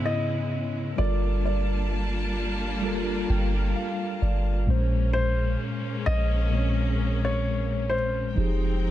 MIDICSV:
0, 0, Header, 1, 5, 480
1, 0, Start_track
1, 0, Tempo, 923077
1, 512, Time_signature, 4, 2, 24, 8
1, 4632, End_track
2, 0, Start_track
2, 0, Title_t, "Grand piano"
2, 0, Program_c, 0, 0
2, 29, Note_on_c, 0, 75, 87
2, 511, Note_on_c, 0, 74, 93
2, 525, Note_off_c, 0, 75, 0
2, 734, Note_off_c, 0, 74, 0
2, 756, Note_on_c, 0, 74, 79
2, 2173, Note_off_c, 0, 74, 0
2, 2670, Note_on_c, 0, 72, 98
2, 3130, Note_off_c, 0, 72, 0
2, 3152, Note_on_c, 0, 75, 101
2, 3768, Note_on_c, 0, 73, 88
2, 3790, Note_off_c, 0, 75, 0
2, 4105, Note_on_c, 0, 72, 90
2, 4121, Note_off_c, 0, 73, 0
2, 4632, Note_off_c, 0, 72, 0
2, 4632, End_track
3, 0, Start_track
3, 0, Title_t, "Tine electric piano"
3, 0, Program_c, 1, 4
3, 0, Control_c, 1, 64, 127
3, 0, Note_on_c, 1, 49, 70
3, 0, Note_on_c, 1, 59, 63
3, 0, Note_on_c, 1, 64, 63
3, 0, Note_on_c, 1, 73, 77
3, 332, Note_off_c, 1, 49, 0
3, 336, Note_off_c, 1, 59, 0
3, 340, Note_off_c, 1, 64, 0
3, 344, Note_off_c, 1, 73, 0
3, 500, Note_on_c, 1, 55, 68
3, 508, Note_on_c, 1, 65, 67
3, 516, Note_on_c, 1, 69, 60
3, 518, Control_c, 1, 64, 0
3, 524, Note_on_c, 1, 70, 80
3, 600, Control_c, 1, 64, 127
3, 1293, Note_off_c, 1, 55, 0
3, 1296, Note_off_c, 1, 65, 0
3, 1300, Note_off_c, 1, 69, 0
3, 1305, Note_off_c, 1, 70, 0
3, 1462, Note_on_c, 1, 55, 86
3, 1470, Note_on_c, 1, 65, 75
3, 1477, Note_on_c, 1, 69, 74
3, 1486, Note_on_c, 1, 70, 96
3, 1716, Note_on_c, 1, 79, 66
3, 1937, Note_off_c, 1, 79, 0
3, 1955, Note_on_c, 1, 77, 70
3, 2176, Note_off_c, 1, 77, 0
3, 2194, Note_on_c, 1, 74, 67
3, 2253, Note_off_c, 1, 55, 0
3, 2257, Note_off_c, 1, 65, 0
3, 2261, Note_off_c, 1, 69, 0
3, 2265, Note_off_c, 1, 70, 0
3, 2416, Note_off_c, 1, 74, 0
3, 2421, Note_on_c, 1, 46, 83
3, 2429, Note_on_c, 1, 56, 76
3, 2437, Note_on_c, 1, 61, 76
3, 2438, Control_c, 1, 64, 0
3, 2446, Note_on_c, 1, 72, 95
3, 2536, Control_c, 1, 64, 127
3, 3213, Note_off_c, 1, 46, 0
3, 3217, Note_off_c, 1, 56, 0
3, 3221, Note_off_c, 1, 61, 0
3, 3225, Note_off_c, 1, 72, 0
3, 3382, Note_on_c, 1, 46, 67
3, 3390, Note_on_c, 1, 56, 65
3, 3399, Note_on_c, 1, 60, 51
3, 3406, Note_on_c, 1, 73, 75
3, 3432, Note_on_c, 1, 61, 62
3, 3435, Note_off_c, 1, 60, 0
3, 4173, Note_off_c, 1, 46, 0
3, 4177, Note_off_c, 1, 56, 0
3, 4185, Note_off_c, 1, 73, 0
3, 4198, Note_off_c, 1, 61, 0
3, 4342, Note_on_c, 1, 53, 70
3, 4349, Note_on_c, 1, 63, 64
3, 4357, Control_c, 1, 64, 0
3, 4358, Note_on_c, 1, 67, 64
3, 4365, Note_on_c, 1, 68, 75
3, 4458, Control_c, 1, 64, 127
3, 4632, Note_off_c, 1, 53, 0
3, 4632, Note_off_c, 1, 63, 0
3, 4632, Note_off_c, 1, 67, 0
3, 4632, Note_off_c, 1, 68, 0
3, 4632, End_track
4, 0, Start_track
4, 0, Title_t, "String section"
4, 0, Program_c, 2, 48
4, 0, Note_on_c, 2, 49, 78
4, 0, Note_on_c, 2, 56, 74
4, 0, Note_on_c, 2, 59, 72
4, 0, Note_on_c, 2, 61, 70
4, 0, Note_on_c, 2, 64, 88
4, 492, Note_off_c, 2, 49, 0
4, 492, Note_off_c, 2, 56, 0
4, 493, Note_off_c, 2, 59, 0
4, 493, Note_off_c, 2, 61, 0
4, 493, Note_off_c, 2, 64, 0
4, 511, Note_on_c, 2, 55, 79
4, 511, Note_on_c, 2, 65, 73
4, 512, Note_on_c, 2, 58, 82
4, 512, Note_on_c, 2, 62, 70
4, 512, Note_on_c, 2, 81, 70
4, 2412, Note_off_c, 2, 55, 0
4, 2412, Note_off_c, 2, 65, 0
4, 2412, Note_off_c, 2, 81, 0
4, 2413, Note_off_c, 2, 58, 0
4, 2413, Note_off_c, 2, 62, 0
4, 2433, Note_on_c, 2, 56, 76
4, 2433, Note_on_c, 2, 58, 70
4, 2433, Note_on_c, 2, 61, 86
4, 4333, Note_off_c, 2, 56, 0
4, 4333, Note_off_c, 2, 58, 0
4, 4333, Note_off_c, 2, 61, 0
4, 4351, Note_on_c, 2, 56, 89
4, 4352, Note_on_c, 2, 53, 82
4, 4352, Note_on_c, 2, 60, 68
4, 4353, Note_on_c, 2, 63, 71
4, 4353, Note_on_c, 2, 79, 71
4, 4632, Note_off_c, 2, 53, 0
4, 4632, Note_off_c, 2, 56, 0
4, 4632, Note_off_c, 2, 60, 0
4, 4632, Note_off_c, 2, 63, 0
4, 4632, Note_off_c, 2, 79, 0
4, 4632, End_track
5, 0, Start_track
5, 0, Title_t, "808-style bass"
5, 0, Program_c, 3, 38
5, 0, Note_on_c, 3, 44, 105
5, 491, Note_off_c, 3, 44, 0
5, 513, Note_on_c, 3, 31, 109
5, 1691, Note_off_c, 3, 31, 0
5, 1713, Note_on_c, 3, 31, 99
5, 1943, Note_off_c, 3, 31, 0
5, 2194, Note_on_c, 3, 31, 98
5, 2423, Note_off_c, 3, 31, 0
5, 2433, Note_on_c, 3, 34, 104
5, 2893, Note_off_c, 3, 34, 0
5, 3155, Note_on_c, 3, 34, 102
5, 4332, Note_off_c, 3, 34, 0
5, 4353, Note_on_c, 3, 29, 103
5, 4632, Note_off_c, 3, 29, 0
5, 4632, End_track
0, 0, End_of_file